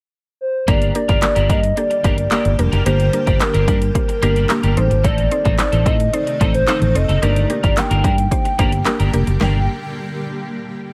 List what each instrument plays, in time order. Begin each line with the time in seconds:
0.41 soft synth lead C5
0.67 fingered electric bass G1, ambient pad D3 G3 A#3 G4, clean electric guitar A#3 D4 G4 A#4, synth pluck A#3 D4 G4 A#4, soft synth lead D5, kick, closed hi-hat
0.82 closed hi-hat
0.95 synth pluck A#3 D4 G4 A#4, soft synth lead D5, muted clean electric guitar stroke, closed hi-hat
1.08 fingered electric bass G1, clean electric guitar A#3 D4 G4 A#4, kick, closed hi-hat
1.22 synth pluck A#3 D4 G4 A#4, soft synth lead D5, muted clean electric guitar stroke, snare, clap, closed hi-hat
1.35 fingered electric bass G1, clean electric guitar A#3 D4 G4 A#4, closed hi-hat
1.49 fingered electric bass G2, clean electric guitar A#3 D4 G4 A#4, synth pluck A#3 D4 G4 A#4, soft synth lead D#5, kick, closed hi-hat
1.63 muted clean electric guitar stroke, closed hi-hat
1.77 synth pluck A#3 D4 G4 A4, soft synth lead D5, muted clean electric guitar stroke, closed hi-hat
1.90 muted clean electric guitar stroke, closed hi-hat
2.04 fingered electric bass G1, clean electric guitar A#3 D4 G4 A#4, synth pluck A#3 D4 G4 A#4, kick, closed hi-hat
2.17 soft synth lead D5, muted clean electric guitar stroke, closed hi-hat
2.31 clean electric guitar A#3 D4 G4 A#4, synth pluck A#3 D4 G4 A#4, snare, clap, closed hi-hat
2.45 fingered electric bass G1, muted clean electric guitar stroke, closed hi-hat
2.59 fingered electric bass F1, synth pluck A#3 D4 G4 A#4, soft synth lead A#4, muted clean electric guitar stroke, closed hi-hat
2.72 fingered electric bass F#1, clean electric guitar A#3 D4 G4 A#4, closed hi-hat
2.86 fingered electric bass G1, clean electric guitar A#3 D4 G4 A#4, synth pluck A#3 D4 G4 A#4, soft synth lead C5, closed hi-hat
3.00 closed hi-hat
3.13 synth pluck A#3 D4 G4 A#4, muted clean electric guitar stroke, closed hi-hat
3.26 fingered electric bass G1, clean electric guitar A#3 D4 G4 A#4, kick, closed hi-hat
3.40 synth pluck A#3 D4 G4 A#4, soft synth lead A#4, muted clean electric guitar stroke, snare, clap, closed hi-hat
3.54 fingered electric bass G1, clean electric guitar A#3 D4 G4 A#4, closed hi-hat
3.67 fingered electric bass G2, clean electric guitar A#3 D4 G4 A#4, synth pluck A#3 D4 G4 A#4, kick, closed hi-hat
3.81 muted clean electric guitar stroke, closed hi-hat
3.95 synth pluck A#3 D4 G4 C5, muted clean electric guitar stroke, kick, closed hi-hat
4.09 muted clean electric guitar stroke, closed hi-hat
4.22 fingered electric bass G1, clean electric guitar A#3 D4 G4 A#4, synth pluck A#3 D4 G4 A#4, closed hi-hat
4.36 clean electric guitar A#3 D4 G4 A#4, closed hi-hat
4.49 synth pluck A#3 D4 G4 A#4, snare, clap, closed hi-hat
4.63 fingered electric bass G1, clean electric guitar A#3 D4 G4 A#4, closed hi-hat
4.77 fingered electric bass A1, ambient pad C3 D#3 A3 D#4, synth pluck C4 D#4 A4 C5, soft synth lead C5, muted clean electric guitar stroke, closed hi-hat
4.90 fingered electric bass G#1, muted clean electric guitar stroke, closed hi-hat
5.04 fingered electric bass A1, clean electric guitar A3 C4 D#4 A4, soft synth lead D5, kick, closed hi-hat
5.18 closed hi-hat
5.31 synth pluck C4 D#4 A4 C5, soft synth lead D5, muted clean electric guitar stroke, closed hi-hat
5.45 fingered electric bass A1, clean electric guitar A3 C4 D#4 A4, kick, closed hi-hat
5.58 synth pluck C4 D#4 A4 C5, soft synth lead D5, muted clean electric guitar stroke, snare, clap, closed hi-hat
5.72 fingered electric bass A1, clean electric guitar A3 C4 D#4 A4, closed hi-hat
5.86 fingered electric bass A2, clean electric guitar A3 C4 D#4 A4, synth pluck C4 D#4 A4 C5, soft synth lead D#5, kick, closed hi-hat
6.00 muted clean electric guitar stroke, closed hi-hat
6.13 synth pluck C4 D#4 A4 C5, soft synth lead D5, muted clean electric guitar stroke, closed hi-hat
6.27 muted clean electric guitar stroke, closed hi-hat
6.40 fingered electric bass A1, clean electric guitar A3 C4 D#4 A4, synth pluck C4 D#4 A4 C5, kick, closed hi-hat
6.54 soft synth lead C5, muted clean electric guitar stroke, closed hi-hat
6.67 clean electric guitar A3 C4 D#4 A4, synth pluck C4 D#4 A4 C5, snare, clap, closed hi-hat
6.81 fingered electric bass A1, muted clean electric guitar stroke, closed hi-hat
6.95 fingered electric bass F1, synth pluck C4 D#4 A4 C5, soft synth lead D#5, muted clean electric guitar stroke, closed hi-hat
7.09 fingered electric bass F#1, clean electric guitar A3 C4 D#4 A4, closed hi-hat
7.22 fingered electric bass G1, ambient pad D3 G3 A#3 G4, clean electric guitar A#3 D4 G4 A#4, synth pluck A#3 D4 G4 A#4, soft synth lead D5, closed hi-hat
7.36 closed hi-hat
7.50 synth pluck A#3 D4 G4 A#4, muted clean electric guitar stroke, closed hi-hat
7.63 fingered electric bass G1, clean electric guitar A#3 D4 G4 A#4, kick, closed hi-hat
7.77 synth pluck A#3 D4 G4 A#4, soft synth lead G5, muted clean electric guitar stroke, snare, clap, closed hi-hat
7.91 fingered electric bass G1, clean electric guitar A#3 D4 G4 A#4, closed hi-hat
8.04 fingered electric bass G2, clean electric guitar A#3 D4 G4 A#4, synth pluck A#3 D4 G4 A#4, kick, closed hi-hat
8.18 muted clean electric guitar stroke, closed hi-hat
8.31 synth pluck A#3 D4 G4 C5, kick, closed hi-hat
8.45 muted clean electric guitar stroke, closed hi-hat
8.59 fingered electric bass G1, clean electric guitar A#3 D4 G4 A#4, synth pluck A#3 D4 G4 C5, kick, closed hi-hat
8.72 muted clean electric guitar stroke, closed hi-hat
8.85 synth pluck A#3 D4 G4 A#4, muted clean electric guitar stroke, snare, clap, closed hi-hat
8.99 fingered electric bass G1, clean electric guitar A#3 D4 G4 A#4, closed hi-hat
9.13 fingered electric bass F1, synth pluck A#3 D4 G4 A#4, muted clean electric guitar stroke, closed hi-hat
9.27 fingered electric bass F#1, muted clean electric guitar stroke, closed hi-hat
9.41 fingered electric bass G1, clean electric guitar A#3 D4 G4 A#4, synth pluck A#3 D4 G4 A#4, soft synth lead G5, snare, floor tom